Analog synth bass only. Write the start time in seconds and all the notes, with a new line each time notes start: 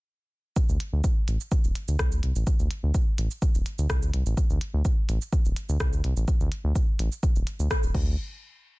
0.69 D2
0.93 D2
1.28 A1
1.64 D1
1.88 D2
1.99 C2
2.12 D2
2.23 C2
2.36 A1
2.59 D2
2.83 D2
3.18 A1
3.55 D1
3.78 D2
3.90 C2
4.02 D2
4.13 C2
4.26 A1
4.50 D2
4.74 D2
5.09 A1
5.45 D1
5.69 D2
5.80 C2
5.93 D2
6.04 C2
6.17 A1
6.40 D2
6.64 D2
6.99 A1
7.36 D1
7.59 D2
7.83 D1
7.94 D2